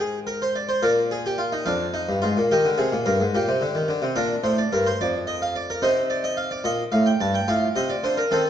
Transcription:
0.00 0.80 G#2 medium
0.00 0.17 G#4 medium
0.00 0.41 C5 medium
0.27 0.41 A#4 medium
0.42 0.55 C5 medium
0.56 0.69 D5 medium
0.69 0.83 C5 medium
0.82 1.64 A#2 medium
0.82 1.00 A#4 medium
0.82 1.65 D5 medium
1.11 1.25 G#4 medium
1.26 1.39 G4 medium
1.38 1.52 F4 medium
1.52 1.66 D#4 medium
1.66 2.07 F2 medium
1.66 1.84 D4 medium
1.66 2.47 F5 medium
1.94 2.11 D#4 medium
2.09 2.22 G2 medium
2.22 2.36 G#2 medium
2.22 2.39 F4 medium
2.37 2.50 A#2 medium
2.51 2.65 D#3 medium
2.51 2.68 G4 medium
2.51 3.05 A#4 medium
2.65 2.78 D3 medium
2.78 2.92 C3 medium
2.78 2.95 G#4 medium
2.93 3.06 A#2 medium
3.06 3.20 G2 medium
3.06 3.23 A#4 medium
3.20 3.34 G#2 medium
3.35 3.48 A#2 medium
3.35 4.15 G4 medium
3.48 3.62 C3 medium
3.61 3.75 D3 medium
3.75 3.89 D#3 medium
3.88 4.02 D3 medium
4.02 4.16 C3 medium
4.16 4.34 A#2 medium
4.16 5.78 D4 medium
4.16 4.33 A#4 medium
4.44 4.61 A2 medium
4.44 4.58 C5 medium
4.58 4.72 D5 medium
4.72 4.90 G2 medium
4.72 4.86 A#4 medium
4.86 5.00 C5 medium
5.01 5.81 F2 medium
5.01 5.18 D5 loud
5.27 5.41 D#5 medium
5.42 5.55 F5 medium
5.56 5.69 D5 medium
5.70 5.83 A#4 medium
5.82 6.63 C3 medium
5.82 7.45 D#4 medium
5.82 6.00 C5 medium
6.10 6.24 D5 medium
6.24 6.37 D#5 medium
6.37 6.51 F5 medium
6.51 6.65 D5 medium
6.64 6.82 A#2 medium
6.64 6.82 D#5 loud
6.92 7.10 A2 medium
6.92 7.06 F5 medium
7.06 7.20 G5 medium
7.21 7.38 G2 medium
7.21 7.34 A5 medium
7.34 7.48 G5 medium
7.48 7.66 A2 medium
7.48 8.30 F4 medium
7.48 7.66 F5 medium
7.76 7.94 C3 medium
7.76 7.90 D#5 medium
7.90 8.04 D5 medium
8.03 8.21 D3 medium
8.03 8.18 C5 medium
8.17 8.32 A#4 medium
8.31 8.49 D#3 medium
8.31 8.50 C4 medium
8.31 8.50 A4 medium

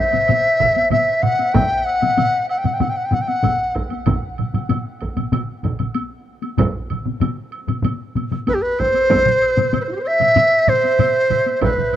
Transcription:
0.00 0.91 E5 medium
0.12 taiko low-mid medium
0.12 taiko mid medium
0.12 taiko high medium
0.12 high woodblock soft
0.28 taiko low-mid medium
0.28 taiko mid loud
0.28 taiko high medium
0.28 high woodblock soft
0.59 taiko medium
0.59 taiko low-mid medium
0.59 taiko mid medium
0.59 high woodblock soft
0.75 taiko high medium
0.75 high woodblock soft
0.92 1.24 E5 medium
0.92 taiko low-mid medium
0.92 taiko mid medium
0.92 taiko high medium
0.92 high woodblock soft
1.23 1.55 F#5 medium
1.23 taiko low-mid medium
1.23 taiko mid medium
1.23 high woodblock soft
1.39 taiko high medium
1.39 high woodblock soft
1.54 1.87 G5 medium
1.54 taiko medium
1.54 taiko low-mid medium
1.54 taiko mid medium
1.54 taiko high medium
1.54 high woodblock soft
1.85 2.49 F#5 medium
1.85 high woodblock soft
2.02 taiko low-mid medium
2.02 taiko mid medium
2.02 taiko high medium
2.02 high woodblock soft
2.17 taiko low-mid medium
2.17 taiko mid medium
2.17 taiko high medium
2.17 high woodblock soft
2.49 2.59 F#5 medium
2.49 high woodblock soft
2.58 2.67 G5 medium
2.65 2.75 F#5 medium
2.65 taiko low-mid medium
2.65 taiko mid medium
2.65 taiko high soft
2.65 high woodblock soft
2.74 2.84 G5 medium
2.80 2.91 F#5 medium
2.80 taiko low-mid medium
2.80 taiko mid medium
2.80 taiko high medium
2.80 high woodblock soft
2.89 2.98 G5 medium
2.97 3.07 F#5 medium
3.05 3.15 G5 medium
3.12 3.23 F#5 medium
3.12 taiko low-mid medium
3.12 taiko mid medium
3.12 taiko high soft
3.12 high woodblock soft
3.21 3.30 G5 medium
3.27 3.75 F#5 medium
3.27 taiko high soft
3.27 high woodblock soft
3.43 taiko medium
3.43 taiko low-mid medium
3.43 taiko mid medium
3.43 taiko high medium
3.43 high woodblock soft
3.75 taiko medium
3.75 high woodblock soft
3.90 taiko high soft
3.90 high woodblock soft
4.06 taiko medium
4.06 taiko low-mid medium
4.06 taiko mid medium
4.06 taiko high medium
4.06 high woodblock soft
4.38 taiko low-mid medium
4.38 taiko mid medium
4.38 high woodblock soft
4.54 taiko low-mid medium
4.54 taiko mid medium
4.54 taiko high soft
4.54 high woodblock soft
4.69 taiko low-mid medium
4.69 taiko mid medium
4.69 taiko high medium
4.69 high woodblock soft
5.00 taiko medium
5.00 high woodblock soft
5.16 taiko low-mid medium
5.16 taiko mid medium
5.16 taiko high soft
5.16 high woodblock soft
5.32 taiko low-mid medium
5.32 taiko mid medium
5.32 taiko high medium
5.32 high woodblock medium
5.64 taiko medium
5.64 taiko low-mid medium
5.64 taiko mid medium
5.64 taiko high soft
5.64 high woodblock soft
5.79 taiko low-mid medium
5.79 taiko mid medium
5.79 taiko high soft
5.79 high woodblock soft
5.95 taiko high medium
5.95 high woodblock soft
6.42 taiko high soft
6.42 high woodblock soft
6.57 taiko medium
6.57 taiko low-mid medium
6.57 taiko mid medium
6.57 taiko high medium
6.57 high woodblock medium
6.90 taiko low-mid medium
6.90 taiko mid medium
6.90 high woodblock soft
7.05 taiko low-mid medium
7.05 taiko mid medium
7.05 taiko high soft
7.20 taiko low-mid medium
7.20 taiko mid medium
7.20 taiko high medium
7.20 high woodblock medium
7.52 high woodblock soft
7.68 taiko low-mid medium
7.68 taiko mid medium
7.68 taiko high soft
7.68 high woodblock soft
7.83 taiko low-mid medium
7.83 taiko mid loud
7.83 taiko high medium
7.83 high woodblock soft
8.15 taiko low-mid medium
8.15 taiko mid medium
8.15 taiko high soft
8.15 high woodblock soft
8.31 taiko low-mid medium
8.31 taiko mid medium
8.31 taiko high soft
8.31 high woodblock soft
8.47 8.56 B4 medium
8.47 taiko medium
8.47 taiko high medium
8.47 high woodblock soft
8.54 8.63 G4 medium
8.62 8.81 B4 medium
8.79 9.81 C5 medium
8.79 taiko medium
8.79 high woodblock soft
8.94 taiko high soft
8.94 high woodblock soft
9.10 taiko medium
9.10 taiko high medium
9.10 high woodblock soft
9.26 taiko low-mid medium
9.26 taiko mid medium
9.42 high woodblock soft
9.57 taiko low-mid medium
9.57 taiko mid medium
9.57 taiko high medium
9.57 high woodblock soft
9.73 taiko low-mid medium
9.73 taiko mid medium
9.73 taiko high medium
9.73 high woodblock soft
9.81 9.84 B4 soft
9.81 9.88 C5 soft
9.89 9.91 E4 soft
9.89 9.95 F#4 soft
9.96 10.00 G4 soft
10.00 10.03 B4 medium
10.00 10.09 C5 medium
10.05 10.70 E5 medium
10.05 high woodblock soft
10.20 taiko low-mid medium
10.20 taiko mid medium
10.20 taiko high soft
10.20 high woodblock soft
10.36 taiko low-mid medium
10.36 taiko mid medium
10.36 taiko high medium
10.36 high woodblock soft
10.67 11.63 C5 medium
10.67 taiko low-mid medium
10.67 taiko mid medium
10.67 taiko high soft
10.67 high woodblock soft
10.84 taiko high soft
10.84 high woodblock soft
10.99 taiko low-mid medium
10.99 taiko mid medium
10.99 taiko high medium
10.99 high woodblock soft
11.30 taiko low-mid medium
11.30 taiko mid medium
11.30 high woodblock soft
11.46 taiko high soft
11.46 high woodblock soft
11.62 11.96 B4 medium
11.62 taiko medium
11.62 taiko low-mid medium
11.62 taiko mid medium
11.62 taiko high medium
11.62 high woodblock soft
11.78 taiko low-mid medium
11.78 taiko mid medium

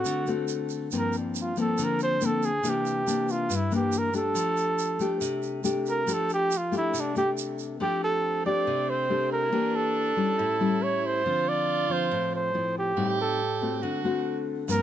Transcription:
0.00 0.24 A3 medium
0.00 0.24 C4 medium
0.00 0.24 F#4 medium
0.00 0.29 F#4 medium
0.05 0.89 D3 medium
0.05 shaker medium
0.27 0.88 A3 medium
0.27 0.88 C4 medium
0.27 0.89 F#4 medium
0.27 shaker soft
0.48 shaker medium
0.70 shaker soft
0.91 1.76 G2 medium
0.91 1.53 F3 medium
0.91 1.53 A#3 medium
0.91 1.53 C4 medium
0.91 shaker medium
0.98 1.15 A#4 medium
1.13 shaker soft
1.18 1.34 D4 soft
1.35 shaker medium
1.41 1.59 F4 medium
1.57 2.18 F3 medium
1.57 2.18 A#3 medium
1.57 2.18 C4 medium
1.57 1.85 A4 medium
1.57 shaker soft
1.78 2.62 D3 medium
1.78 shaker medium
1.84 2.02 A#4 medium
2.00 2.27 C5 loud
2.00 shaker soft
2.21 2.48 F3 medium
2.21 2.49 A#3 medium
2.21 2.49 C4 medium
2.21 shaker medium
2.25 2.46 A4 medium
2.43 2.71 G#4 medium
2.43 shaker soft
2.63 3.47 C3 medium
2.63 3.03 E3 medium
2.63 3.03 A#3 medium
2.63 3.04 D4 medium
2.63 shaker medium
2.69 3.33 G4 medium
2.86 shaker soft
3.07 3.49 E3 soft
3.07 3.50 A#3 medium
3.07 3.50 D4 medium
3.07 shaker medium
3.29 3.57 F4 medium
3.29 shaker soft
3.50 4.33 G2 medium
3.50 shaker medium
3.56 3.74 E4 medium
3.71 4.11 E3 medium
3.71 4.11 A#3 medium
3.71 4.11 D4 medium
3.71 shaker soft
3.75 3.99 G4 medium
3.92 shaker medium
3.98 4.16 A#4 loud
4.14 4.96 A3 medium
4.14 4.97 D4 medium
4.14 4.97 G4 medium
4.14 5.19 A4 medium
4.14 shaker soft
4.35 5.19 F3 medium
4.35 shaker medium
4.57 shaker soft
4.79 shaker medium
5.00 5.61 A3 medium
5.00 5.61 D4 medium
5.00 5.62 G4 medium
5.00 shaker soft
5.21 6.05 C3 medium
5.21 shaker medium
5.43 shaker soft
5.64 6.04 A3 medium
5.64 6.04 D4 medium
5.64 6.04 G4 medium
5.64 shaker medium
5.86 6.15 A#4 medium
5.86 shaker soft
6.07 6.91 F3 medium
6.07 6.50 A3 medium
6.07 6.50 D4 medium
6.07 6.51 G4 medium
6.07 shaker medium
6.13 6.32 A4 medium
6.30 6.59 G4 loud
6.30 shaker soft
6.51 shaker medium
6.57 6.75 F4 medium
6.72 7.11 A3 medium
6.72 7.12 D4 medium
6.72 7.12 G4 medium
6.72 shaker soft
6.77 7.01 E4 medium
6.94 7.78 C3 medium
6.94 shaker medium
7.00 7.17 D4 medium
7.16 7.77 A3 medium
7.16 7.77 D4 medium
7.16 7.77 G4 medium
7.16 7.30 G4 medium
7.16 shaker soft
7.38 shaker medium
7.59 shaker soft
7.80 8.64 F3 medium
7.80 8.41 A3 medium
7.80 9.46 C4 medium
7.80 8.41 D4 medium
7.80 8.42 G4 medium
7.80 8.01 G4 loud
8.04 8.43 A4 loud
8.45 9.06 A3 medium
8.45 9.06 D4 medium
8.45 9.07 G4 medium
8.45 8.91 D5 medium
8.67 9.50 C3 medium
8.90 9.32 C5 medium
9.10 9.49 A3 medium
9.10 9.49 D4 medium
9.10 9.50 G4 medium
9.33 9.77 A#4 loud
9.44 9.54 E4 medium
9.52 10.16 E3 medium
9.52 10.13 A#3 medium
9.52 10.39 D4 loud
9.52 10.13 D4 medium
9.52 10.14 G4 medium
9.76 10.84 A4 loud
10.17 10.56 G3 medium
10.17 10.56 C#4 medium
10.17 10.57 E4 medium
10.38 11.23 A2 medium
10.38 11.27 E4 loud
10.60 11.21 G3 medium
10.60 11.21 C#4 medium
10.60 11.21 E4 medium
10.83 11.08 C#5 medium
11.06 11.50 C5 loud
11.25 12.09 D3 medium
11.25 11.86 F3 soft
11.25 11.86 C4 medium
11.25 12.70 F4 loud
11.49 11.93 D5 loud
11.90 12.50 F3 medium
11.90 12.51 C4 medium
11.90 12.33 C5 medium
12.11 12.95 A2 medium
12.35 12.74 C5 medium
12.54 12.94 F3 medium
12.54 12.94 C4 medium
12.54 12.94 E4 medium
12.78 13.17 G4 medium
12.97 13.81 A2 medium
12.97 13.40 G3 medium
12.97 13.40 C4 medium
12.97 13.40 D#4 medium
12.97 13.84 G4 loud
13.21 13.80 A4 medium
13.62 14.01 A3 medium
13.62 14.01 C4 medium
13.62 14.01 F#4 medium
13.82 14.67 D3 medium
13.82 14.47 F#4 medium
14.04 14.65 A3 medium
14.04 14.66 C4 medium
14.04 14.66 F#4 medium
14.68 14.82 G2 medium
14.68 14.82 F3 medium
14.68 14.82 A#3 medium
14.68 14.82 C4 medium
14.68 14.82 G4 loud
14.68 14.82 A#4 loud
14.68 shaker medium

